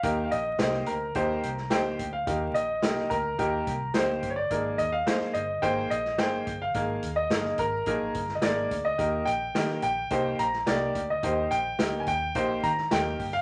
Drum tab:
HH |x-x-x-x-x-x-x-x-|x-x-x-x-x-x-x-x-|x-x-x-x-x-x-x-x-|x-x-x-x-x-x-x-x-|
SD |----oo-----oo---|----oo------o---|----oo-----oo---|----oo-----oo---|
BD |o-------o-----o-|o-----o-o-o---o-|o-------o-----o-|o-----o-o-o---o-|

HH |x-x-x-x-x-x-x-x-|x-x-x-x-x-x-x-o-|
SD |----oo-----oo---|----o------oo---|
BD |o-------o-----o-|o-----o-o-o---o-|